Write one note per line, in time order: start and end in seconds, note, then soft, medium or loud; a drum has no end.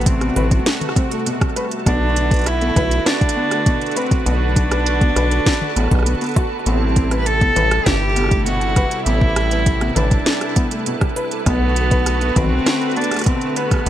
0.00 0.32 A1 loud
0.00 1.82 C3 medium
0.00 1.82 G3 medium
0.00 9.02 A3 medium
0.00 1.84 F#4 medium
0.00 13.89 A4 medium
0.00 closed hi-hat soft
0.06 0.66 C4 medium
0.06 kick loud
0.06 closed hi-hat medium
0.21 0.29 B3 medium
0.21 cross-stick medium
0.21 closed hi-hat soft
0.36 0.60 A1 loud
0.36 0.44 B4 loud
0.36 closed hi-hat medium
0.36 high tom medium
0.51 kick loud
0.51 closed hi-hat medium
0.66 snare loud
0.66 closed hi-hat medium
0.81 closed hi-hat soft
0.81 high tom medium
0.89 cross-stick medium
0.96 1.04 C4 loud
0.96 kick loud
0.96 closed hi-hat medium
1.11 1.23 A3 medium
1.11 closed hi-hat medium
1.26 1.34 B2 loud
1.26 closed hi-hat medium
1.41 kick loud
1.41 cross-stick medium
1.41 closed hi-hat soft
1.56 1.64 B4 loud
1.56 closed hi-hat medium
1.71 closed hi-hat medium
1.86 2.72 B1 loud
1.86 6.62 D3 medium
1.86 1.98 B3 loud
1.86 2.48 D4 loud
1.86 6.62 F#4 medium
1.86 6.62 B4 medium
1.86 kick loud
1.86 cross-stick medium
1.86 closed hi-hat medium
2.16 closed hi-hat medium
2.31 2.39 B4 medium
2.31 kick loud
2.31 closed hi-hat medium
2.34 closed hi-hat soft
2.36 closed hi-hat soft
2.39 closed hi-hat soft
2.41 closed hi-hat soft
2.44 cross-stick medium
2.44 closed hi-hat soft
2.46 3.08 E4 loud
2.46 closed hi-hat medium
2.61 2.69 B3 medium
2.61 closed hi-hat soft
2.76 3.00 B1 loud
2.76 2.84 B4 loud
2.76 kick loud
2.76 closed hi-hat medium
2.76 high tom medium
2.91 closed hi-hat medium
3.06 3.98 D4 loud
3.06 cross-stick medium
3.06 snare loud
3.06 closed hi-hat medium
3.21 kick loud
3.21 closed hi-hat soft
3.29 closed hi-hat medium
3.36 3.44 B3 loud
3.51 3.63 A3 medium
3.51 cross-stick medium
3.51 closed hi-hat medium
3.66 3.74 B2 loud
3.66 kick loud
3.66 closed hi-hat medium
3.81 closed hi-hat soft
3.86 closed hi-hat soft
3.91 closed hi-hat soft
3.96 4.28 C4 loud
3.96 4.04 B4 loud
3.96 closed hi-hat medium
4.06 closed hi-hat soft
4.11 kick loud
4.11 closed hi-hat medium
4.26 5.12 B1 loud
4.26 4.38 B3 loud
4.26 6.36 D4 loud
4.26 closed hi-hat medium
4.56 kick loud
4.56 closed hi-hat medium
4.71 4.79 B4 medium
4.71 cross-stick medium
4.71 closed hi-hat medium
4.86 closed hi-hat medium
5.01 5.09 B3 medium
5.01 kick loud
5.01 closed hi-hat soft
5.16 5.40 B1 loud
5.16 5.24 B4 loud
5.16 cross-stick medium
5.16 closed hi-hat medium
5.31 closed hi-hat medium
5.46 kick loud
5.46 snare loud
5.46 closed hi-hat medium
5.54 closed hi-hat soft
5.61 high tom medium
5.76 5.88 A1 medium
5.76 5.84 B3 loud
5.76 cross-stick soft
5.76 closed hi-hat medium
5.80 cross-stick soft
5.84 cross-stick soft
5.88 6.15 B1 loud
5.88 5.99 B3 medium
5.88 kick loud
5.88 cross-stick soft
5.88 closed hi-hat medium
5.95 cross-stick soft
5.99 cross-stick soft
6.03 6.11 B3 loud
6.03 cross-stick soft
6.03 closed hi-hat medium
6.21 6.29 B3 medium
6.21 closed hi-hat soft
6.24 closed hi-hat soft
6.26 closed hi-hat soft
6.29 closed hi-hat soft
6.31 closed hi-hat soft
6.34 6.44 F#4 medium
6.34 kick loud
6.34 cross-stick medium
6.34 closed hi-hat soft
6.36 closed hi-hat medium
6.66 7.52 A1 loud
6.66 11.42 C3 medium
6.66 11.42 G3 medium
6.66 6.78 B3 loud
6.66 7.16 C4 loud
6.66 11.42 E4 medium
6.66 closed hi-hat medium
6.96 kick loud
6.96 closed hi-hat medium
7.11 7.19 B4 medium
7.11 cross-stick soft
7.11 closed hi-hat medium
7.19 7.28 B4 medium
7.26 7.88 A4 loud
7.26 closed hi-hat medium
7.41 7.49 B3 medium
7.41 kick loud
7.41 closed hi-hat soft
7.56 7.80 A1 loud
7.56 7.64 B4 loud
7.56 closed hi-hat medium
7.56 high tom loud
7.71 cross-stick medium
7.71 closed hi-hat medium
7.86 8.87 G1 medium
7.86 8.46 G4 loud
7.86 kick loud
7.86 snare loud
7.86 closed hi-hat medium
8.16 8.24 B3 loud
8.16 cross-stick soft
8.16 closed hi-hat medium
8.19 cross-stick soft
8.21 cross-stick soft
8.24 cross-stick soft
8.26 cross-stick soft
8.29 8.43 A3 medium
8.29 kick loud
8.29 cross-stick soft
8.29 closed hi-hat medium
8.46 8.54 B2 loud
8.46 9.02 F#4 loud
8.46 closed hi-hat medium
8.61 closed hi-hat soft
8.76 8.84 B4 loud
8.76 kick loud
8.76 cross-stick medium
8.76 closed hi-hat medium
8.91 closed hi-hat medium
9.06 9.92 A1 loud
9.06 9.18 B3 loud
9.06 9.98 E4 loud
9.06 13.89 B4 medium
9.06 closed hi-hat medium
9.21 kick loud
9.36 cross-stick medium
9.36 closed hi-hat medium
9.51 9.59 B4 medium
9.51 closed hi-hat medium
9.66 kick loud
9.66 closed hi-hat medium
9.81 9.89 B3 medium
9.81 cross-stick medium
9.81 closed hi-hat soft
9.96 10.20 A1 loud
9.96 10.86 D4 medium
9.96 10.04 B4 loud
9.96 closed hi-hat medium
9.96 high tom loud
10.11 kick loud
10.11 closed hi-hat soft
10.26 snare loud
10.26 closed hi-hat medium
10.41 cross-stick medium
10.41 closed hi-hat soft
10.56 10.64 B3 loud
10.56 kick loud
10.56 closed hi-hat medium
10.71 10.83 A3 medium
10.71 closed hi-hat medium
10.86 10.94 B2 loud
10.86 closed hi-hat medium
11.01 kick loud
11.01 cross-stick medium
11.01 closed hi-hat soft
11.16 11.24 B4 loud
11.16 closed hi-hat medium
11.31 closed hi-hat medium
11.46 12.32 B1 loud
11.46 13.89 D3 medium
11.46 13.89 A3 medium
11.46 11.58 B3 loud
11.46 12.38 B3 loud
11.46 13.84 F#4 loud
11.46 kick loud
11.46 cross-stick medium
11.46 closed hi-hat medium
11.76 closed hi-hat medium
11.91 11.99 B4 medium
11.91 kick loud
11.91 closed hi-hat medium
12.06 cross-stick medium
12.06 closed hi-hat medium
12.21 12.29 B3 medium
12.21 closed hi-hat soft
12.36 12.60 B1 loud
12.36 12.98 C4 loud
12.36 12.44 B4 loud
12.36 kick loud
12.36 closed hi-hat medium
12.36 high tom soft
12.39 high tom medium
12.41 high tom medium
12.44 high tom medium
12.46 high tom medium
12.49 high tom medium
12.66 cross-stick medium
12.66 snare loud
12.66 closed hi-hat medium
12.81 closed hi-hat soft
12.91 closed hi-hat soft
12.96 13.04 B3 loud
12.96 13.26 D4 loud
12.96 closed hi-hat soft
13.01 closed hi-hat soft
13.04 closed hi-hat soft
13.11 13.23 A3 medium
13.11 cross-stick medium
13.11 closed hi-hat medium
13.14 cross-stick soft
13.14 closed hi-hat soft
13.16 closed hi-hat soft
13.19 cross-stick soft
13.19 closed hi-hat medium
13.21 closed hi-hat soft
13.24 cross-stick soft
13.24 closed hi-hat soft
13.26 13.34 B2 loud
13.26 13.58 C4 loud
13.26 kick loud
13.26 closed hi-hat medium
13.31 cross-stick soft
13.36 cross-stick soft
13.41 closed hi-hat soft
13.56 13.89 B3 loud
13.56 13.64 B4 loud
13.56 closed hi-hat medium
13.71 kick loud
13.71 cross-stick medium
13.71 closed hi-hat medium
13.74 cross-stick soft
13.76 cross-stick soft
13.79 cross-stick soft
13.84 13.89 B1 loud
13.84 13.89 B3 loud
13.84 cross-stick soft